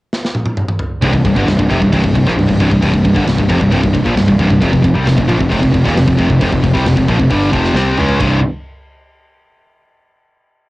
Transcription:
0.13 snare
0.25 snare
0.35 high tom
0.45 high tom
0.57 mid tom
0.68 mid tom
0.79 floor tom
1.02 picked electric bass C1, distorted electric guitar C2 G2, kick, crash
1.13 picked electric bass C1, distorted electric guitar C2 G2, kick
1.25 picked electric bass C1, distorted electric guitar C2 G2, kick, crash
1.36 picked electric bass G1, distorted electric guitar G2 D3, kick
1.46 picked electric bass C1, distorted electric guitar C2 G2, snare, crash
1.59 picked electric bass C1, distorted electric guitar C2 G2, kick
1.70 picked electric bass F1, distorted electric guitar F2 C3, kick, crash
1.82 picked electric bass C1, distorted electric guitar C2 G2, kick
1.92 picked electric bass C1, distorted electric guitar C2 G2, kick, crash
2.04 picked electric bass C1, distorted electric guitar C2 G2, kick
2.14 picked electric bass C1, distorted electric guitar C2 G2, kick, crash
2.26 picked electric bass A#1, distorted electric guitar A#2 F3, kick, snare
2.36 picked electric bass C1, distorted electric guitar C2 G2, snare, crash
2.47 picked electric bass C1, distorted electric guitar C2 G2, kick
2.60 picked electric bass C1, distorted electric guitar C2 G2, kick, crash
2.71 picked electric bass C1, distorted electric guitar C2 G2, kick
2.82 picked electric bass C1, distorted electric guitar C2 G2, kick, crash
2.93 picked electric bass C1, distorted electric guitar C2 G2, kick
3.04 picked electric bass C1, distorted electric guitar C2 G2, kick, crash
3.14 picked electric bass G1, distorted electric guitar G2 D3, kick
3.25 picked electric bass C1, distorted electric guitar C2 G2, snare, crash
3.39 picked electric bass C1, distorted electric guitar C2 G2, kick
3.49 picked electric bass F1, distorted electric guitar F2 C3, kick, crash
3.60 picked electric bass C1, distorted electric guitar C2 G2, kick
3.71 picked electric bass C1, distorted electric guitar C2 G2, kick, crash
3.82 picked electric bass C1, distorted electric guitar C2 G2, kick
3.93 picked electric bass C1, distorted electric guitar C2 G2, kick, crash
4.05 picked electric bass A#1, distorted electric guitar A#2 F3, kick
4.15 picked electric bass C1, distorted electric guitar C2 G2, snare, crash
4.27 picked electric bass C1, distorted electric guitar C2 G2, kick
4.39 picked electric bass C1, distorted electric guitar C2 G2, kick, crash
4.49 picked electric bass C1, distorted electric guitar C2 G2, kick
4.61 picked electric bass F1, distorted electric guitar F2 C3, kick, crash
4.72 picked electric bass F1, distorted electric guitar F2 C3, kick
4.82 picked electric bass F1, distorted electric guitar F2 C3, kick, crash
4.94 picked electric bass C2, distorted electric guitar C3 G3, kick
5.05 picked electric bass F1, distorted electric guitar F2 C3, snare, crash
5.17 picked electric bass F1, distorted electric guitar F2 C3, kick
5.28 picked electric bass A#1, distorted electric guitar A#2 F3, kick, crash
5.39 picked electric bass F1, distorted electric guitar F2 C3, kick
5.49 picked electric bass F1, distorted electric guitar F2 C3, kick, crash
5.60 picked electric bass F1, distorted electric guitar F2 C3, kick
5.72 picked electric bass F1, distorted electric guitar F2 C3, kick, crash
5.84 picked electric bass D#1, distorted electric guitar D#2 A#2, kick, snare
5.95 picked electric bass F1, distorted electric guitar F2 C3, snare, crash
6.07 picked electric bass F1, distorted electric guitar F2 C3, kick
6.17 picked electric bass F1, distorted electric guitar F2 C3, kick, crash
6.29 picked electric bass F1, distorted electric guitar F2 C3, kick
6.41 picked electric bass F1, distorted electric guitar F2 C3, kick, crash
6.51 picked electric bass F1, distorted electric guitar F2 C3, kick
6.62 picked electric bass F1, distorted electric guitar F2 C3, kick, crash
6.74 picked electric bass C2, distorted electric guitar C3 G3, kick, snare
6.85 picked electric bass F1, distorted electric guitar F2 C3, snare, crash
6.96 picked electric bass F1, distorted electric guitar F2 C3, kick
7.08 picked electric bass A#1, distorted electric guitar A#2 F3, kick, crash
7.18 picked electric bass F1, distorted electric guitar F2 C3, kick
7.30 picked electric bass G1, distorted electric guitar G2 D3 G3, kick, crash
7.51 picked electric bass F1, distorted electric guitar F2 C3 F3, kick, crash
7.64 snare
7.74 picked electric bass C2, distorted electric guitar C3 G3 C4, snare
7.97 picked electric bass C#2, distorted electric guitar C#3 G#3 C#4, mid tom
8.09 floor tom
8.19 picked electric bass C1, distorted electric guitar C2 G2 C3, kick, crash

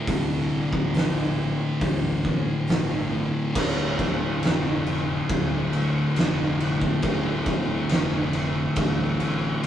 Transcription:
Already playing: distorted electric guitar D3
0.07 fingered electric bass C2, distorted electric guitar D2 A2 D3, kick, open hi-hat
0.73 kick
0.94 fingered electric bass A#1, snare, open hi-hat
1.81 fingered electric bass A1, kick, open hi-hat
2.25 kick
2.68 fingered electric bass G1, snare, open hi-hat
3.12 distorted electric guitar D2 A2 D3
3.55 fingered electric bass D1, distorted electric guitar D2 A2 D3, kick, crash
3.99 kick, snare, crash
4.43 fingered electric bass F1, snare, crash
4.87 crash
5.29 fingered electric bass D1, kick, crash
5.73 distorted electric guitar D2 A2 D3, crash
6.16 fingered electric bass F1, distorted electric guitar D2 A2 D3, snare, crash
6.60 crash
6.82 kick
7.02 fingered electric bass D1, distorted electric guitar D2 A2 D3, kick, crash
7.46 kick, crash
7.89 fingered electric bass F1, snare, crash
8.33 crash
8.76 fingered electric bass A1, kick, crash
9.20 distorted electric guitar D2 A2 D3, crash
9.63 distorted electric guitar D2, crash

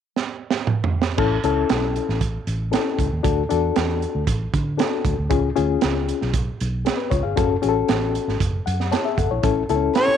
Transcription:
0.16 snare
0.51 snare
0.67 mid tom
0.84 floor tom
1.02 snare
1.17 fingered electric bass A1, reed electric piano C#4 E4 A4, kick, crash
1.44 fingered electric bass C#2, reed electric piano C#4 E4 A4, closed hi-hat
1.69 fingered electric bass B1, snare, closed hi-hat
1.96 closed hi-hat
2.09 fingered electric bass A1, snare
2.21 kick, closed hi-hat
2.47 fingered electric bass A1, closed hi-hat
2.71 reed electric piano C#4 E4 A4, snare, closed hi-hat
2.99 fingered electric bass C#2, kick, closed hi-hat
3.12 fingered electric bass D#2
3.23 fingered electric bass D2, reed electric piano D4 F#4 A4, kick, closed hi-hat
3.49 fingered electric bass E2, reed electric piano D4 F#4 A4, closed hi-hat
3.76 fingered electric bass E2, snare, closed hi-hat
4.02 closed hi-hat
4.15 fingered electric bass D2
4.27 fingered electric bass A1, kick, closed hi-hat
4.54 fingered electric bass D3, kick, closed hi-hat
4.78 reed electric piano D4 F#4 A4, snare, closed hi-hat
5.05 fingered electric bass D2, kick, closed hi-hat
5.18 fingered electric bass D2
5.30 fingered electric bass C#2, reed electric piano C#4 F4 G#4, kick, closed hi-hat
5.55 fingered electric bass D2, reed electric piano C#4 F4 G#4, closed hi-hat
5.81 fingered electric bass C#2, snare, closed hi-hat
6.09 closed hi-hat
6.21 fingered electric bass B1, snare
6.34 kick, closed hi-hat
6.60 fingered electric bass B1, closed hi-hat
6.85 reed electric piano B3 G#4, snare, closed hi-hat
6.97 reed electric piano B4
7.10 fingered electric bass C#2, reed electric piano F4 C#5, kick, closed hi-hat
7.23 fingered electric bass G1, reed electric piano G#4 F5
7.36 fingered electric bass F#1, reed electric piano C#4 F#4 A4, kick, closed hi-hat
7.62 fingered electric bass A1, reed electric piano C#4 F#4 G#4, closed hi-hat
7.69 reed electric piano A4
7.88 fingered electric bass A1, snare, closed hi-hat
8.15 closed hi-hat
8.28 fingered electric bass G#1, snare
8.40 fingered electric bass F#1, kick, closed hi-hat
8.66 fingered electric bass F#2, reed electric piano F#5, closed hi-hat
8.80 snare
8.91 reed electric piano E4 C#5 A5, snare, closed hi-hat
9.05 reed electric piano G#4 E5
9.18 fingered electric bass F#1, reed electric piano A4 F#5, kick, closed hi-hat
9.31 fingered electric bass A#1, reed electric piano E4 C#5
9.43 fingered electric bass A1, reed electric piano C#4 E4 A4, kick, closed hi-hat
9.69 fingered electric bass C#2, reed electric piano B3 E4 A4, closed hi-hat
9.76 reed electric piano C#4
9.95 harmonica C#5, snare, closed hi-hat
10.08 muted fingered electric bass stroke

